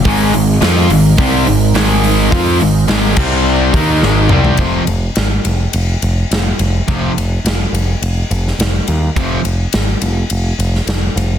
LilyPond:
<<
  \new Staff \with { instrumentName = "Analog synth pad" } { \time 4/4 \key f \minor \tempo 4 = 105 <aes ees' bes'>1~ | <aes ees' bes'>4. <c' g' d''>4 <aes ees' bes'>4. | r1 | r1 |
r1 | }
  \new Staff \with { instrumentName = "Distorted electric guitar" } { \clef bass \time 4/4 \key f \minor <aes, ees aes>8 <aes, ees>8 <f c' f'>8 <aes, ees>8 <c g c'>8 <aes, ees>8 <aes, ees aes>4 | <f c' f'>8 <aes, ees>8 <aes, ees aes>8 <c g c'>4 <ees bes ees'>8 <aes, ees aes>8 <c g c'>8 | <f, c f>8 r2. r8 | <f, c f>8 r2. r8 |
<f, c f>8 r2. r8 | }
  \new Staff \with { instrumentName = "Distorted electric guitar" } { \clef bass \time 4/4 \key f \minor <aes, ees aes>8 <aes, ees>8 <f c' f'>8 <aes, ees>8 <c g c'>8 <aes, ees>8 <aes, ees aes>4 | <f c' f'>8 <aes, ees>8 <aes, ees aes>8 <c g c'>4 <ees bes ees'>8 <aes, ees aes>8 <c g c'>8 | r1 | r1 |
r1 | }
  \new Staff \with { instrumentName = "Overdriven electric guitar" } { \clef bass \time 4/4 \key f \minor <aes, ees aes>8 <aes, ees>8 <f c' f'>8 <aes, ees>8 <c g c'>8 <aes, ees>8 <aes, ees aes>4 | <f c' f'>8 <aes, ees>8 <aes, ees aes>8 <c g c'>4 <ees bes ees'>8 <aes, ees aes>8 <c g c'>8 | <f, c f>8 r2. r8 | <f, c f>8 r2. r8 |
<f, c f>8 r2. r8 | }
  \new Staff \with { instrumentName = "Picked electric bass" } { \clef bass \time 4/4 \key f \minor aes,,8 aes,,8 f,8 aes,,8 c,8 aes,,8 aes,,4 | f,8 aes,,8 aes,,8 c,4 ees,8 aes,,8 c,8 | f,,8 f,,8 aes,,8 f,,8 f,,8 f,,8 f,,8 f,,8 | f,,8 f,,8 f,,8 f,,8 f,,8 f,,8 f,,8 ees,8 |
f,,8 f,,8 aes,,8 f,,8 f,,8 f,,8 f,,8 f,,8 | }
  \new DrumStaff \with { instrumentName = "Drums" } \drummode { \time 4/4 <hho bd>8 hho8 <hho sn>8 hho8 <hho bd>8 hho8 <hho sn>8 hho8 | <hho bd>8 hho8 <hho sn>8 <cymc bd>8 r8 <hho bd>8 sn8 toml16 tomfh16 | <bd cymr>8 cymr8 <cymr sn>8 cymr8 cymr8 cymr8 <cymr sn>8 cymr8 | <bd cymr>8 cymr8 <cymr sn>8 cymr8 cymr8 cymr16 sn16 <cymr sn>8 cymr8 |
<bd cymr>8 cymr8 <cymr sn>8 cymr8 cymr8 cymr16 sn16 <cymr sn>8 cymr8 | }
>>